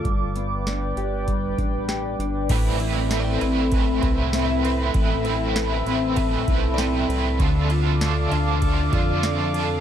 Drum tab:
CC |--------|x-------|--------|--------|
RD |--------|xxxxxxxx|xxxxxxxx|xxxxxxxx|
HH |xxxxxxxx|--------|--------|--------|
TB |--------|--x---x-|--x---x-|--x---x-|
SD |--o---o-|--o---o-|--o---o-|--o---o-|
BD |o---oo--|o---oo--|o---oo--|o---oo--|